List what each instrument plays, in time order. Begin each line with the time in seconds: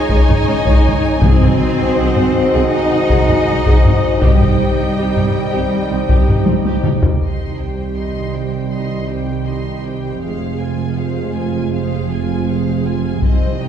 Already playing: trombone section D#3 G#3, cello section D#4, pipe organ D#4 G#4 C#5 G#5, french horn section G#4 C#5, viola section C#5, violin section D#5 G#5
0.10 double bass section C#2, viola section G#4, taiko
0.29 double bass section C#2, viola section D#4, taiko low-mid
0.48 double bass section C#2, viola section C#4
0.66 double bass section C#2, viola section G#4, taiko
0.85 double bass section C#2, viola section D#4, taiko low-mid
1.22 double bass section C2, timpani C3, trombone section G#3, cello section C4, pipe organ F#4 C5, french horn section F#4 C5, viola section G#4 D#5, violin section C5, taiko
1.41 double bass section C2, viola section F#4, taiko low-mid
1.79 double bass section C2, viola section F#4
1.97 double bass section C2, viola section G#4, violin section F#5
2.16 double bass section C2, viola section F#4, taiko low-mid
2.53 double bass section C2, viola section G#4
2.71 cello section D#4, violin section D#5
2.91 double bass section C2, viola section D#4
3.10 double bass section C2, viola section G#4, taiko
3.28 double bass section C2, viola section F#4, taiko low-mid
3.47 double bass section C2, viola section D#4
3.66 double bass section C2, viola section G#4, taiko
3.85 double bass section C2, viola section F#4, taiko low-mid
4.22 double bass section C2, timpani C3, trombone section D#3 G3, cello section G3, pipe organ D#4 G4 G5, viola section G4, violin section G4 G5, french horn section G4, taiko
4.41 double bass section C2, viola section D#4, taiko low-mid
4.79 double bass section C2, viola section D#4
4.97 double bass section C2, viola section G4
5.15 double bass section C2, viola section D#4, taiko low-mid
5.52 double bass section C2, viola section G4
5.91 double bass section C2, viola section C4
6.09 double bass section C2, viola section G4, taiko
6.28 double bass section C2, viola section D#4, taiko low-mid
6.47 double bass section C2, viola section C4, taiko high
6.65 double bass section C2, viola section G4, taiko high
6.84 double bass section C2, viola section D#4, taiko mid
7.02 taiko low
7.21 double bass section C2, cello section C2, trombone section D#3 G3, french horn section C4 G4, viola section D#4, violin section D#5 C6, taiko
7.59 viola section G4, violin section C5 G5
7.97 viola section D#4, violin section D#5 C6
8.34 viola section G4, violin section C5 G5
8.71 viola section D#4, violin section D#5 C6
9.08 viola section G4, violin section C5 G5
9.45 viola section D#4, violin section D#5 C6
9.84 viola section G4, violin section C5 G5
10.21 double bass section F1, cello section F2, trombone section C3 G#3, french horn section F4, viola section G#4, violin section C5 F5
10.58 viola section F4, violin section G#4 G#5
10.96 viola section G#4, violin section C5 F5
11.34 viola section F4, violin section G#4 G#5
11.72 viola section G#4, violin section C5 F5
12.08 viola section F4, violin section G#4 G#5
12.45 viola section G#4, violin section C5 F5
12.81 violin section G#4
12.85 viola section F4, violin section G#5
13.21 double bass section C2, cello section C2, trombone section G3, french horn section C4 D#4, viola section C4, violin section C5 D#5, taiko
13.58 viola section D#4, violin section D#5 G5